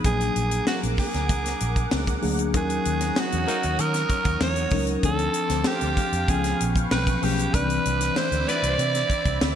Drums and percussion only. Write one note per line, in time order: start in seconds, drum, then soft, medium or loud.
0.04 kick loud
0.04 closed hi-hat medium
0.04 muted conga soft
0.20 closed hi-hat soft
0.36 closed hi-hat medium
0.51 closed hi-hat medium
0.67 snare medium
0.67 high conga medium
0.83 closed hi-hat medium
0.97 kick medium
0.97 snare soft
0.97 open hi-hat medium
0.97 muted conga medium
1.14 snare soft
1.14 closed hi-hat medium
1.29 kick loud
1.29 closed hi-hat medium
1.29 muted conga soft
1.29 low conga medium
1.45 snare soft
1.45 closed hi-hat medium
1.60 closed hi-hat medium
1.76 kick medium
1.76 closed hi-hat medium
1.91 snare loud
1.91 high conga medium
2.07 kick loud
2.07 closed hi-hat medium
2.22 open hi-hat medium
2.22 high conga medium
2.39 closed hi-hat medium
2.53 kick loud
2.53 closed hi-hat medium
2.53 muted conga soft
2.70 closed hi-hat medium
2.85 closed hi-hat medium
3.01 snare soft
3.01 closed hi-hat medium
3.15 snare loud
3.15 high conga medium
3.32 closed hi-hat medium
3.46 snare soft
3.46 closed hi-hat medium
3.46 muted conga medium
3.63 closed hi-hat medium
3.79 closed hi-hat medium
3.79 muted conga soft
3.94 snare soft
3.94 closed hi-hat medium
4.09 kick medium
4.09 closed hi-hat medium
4.25 kick loud
4.25 closed hi-hat medium
4.41 snare loud
4.41 high conga medium
4.56 closed hi-hat medium
4.70 kick loud
4.70 open hi-hat medium
4.70 high conga medium
4.87 closed hi-hat medium
5.03 kick loud
5.03 closed hi-hat medium
5.03 muted conga soft
5.19 closed hi-hat soft
5.34 closed hi-hat medium
5.49 snare soft
5.49 closed hi-hat medium
5.64 snare loud
5.64 high conga medium
5.81 closed hi-hat medium
5.97 kick medium
5.97 closed hi-hat medium
5.97 muted conga medium
6.13 closed hi-hat medium
6.28 kick loud
6.28 closed hi-hat medium
6.28 muted conga soft
6.44 snare soft
6.44 closed hi-hat medium
6.60 closed hi-hat medium
6.76 kick medium
6.76 closed hi-hat medium
6.91 snare loud
6.91 high conga medium
7.07 kick loud
7.07 closed hi-hat medium
7.22 open hi-hat medium
7.22 high conga medium
7.39 closed hi-hat medium
7.54 kick loud
7.54 closed hi-hat medium
7.54 muted conga soft
7.70 closed hi-hat soft
7.85 closed hi-hat medium
8.01 snare soft
8.01 closed hi-hat medium
8.16 snare loud
8.16 high conga medium
8.32 closed hi-hat medium
8.47 snare soft
8.47 closed hi-hat medium
8.47 muted conga medium
8.63 closed hi-hat medium
8.79 closed hi-hat medium
8.79 muted conga soft
8.95 snare soft
8.95 closed hi-hat medium
9.10 kick medium
9.10 closed hi-hat medium
9.26 kick loud
9.26 closed hi-hat medium
9.41 snare loud
9.41 high conga medium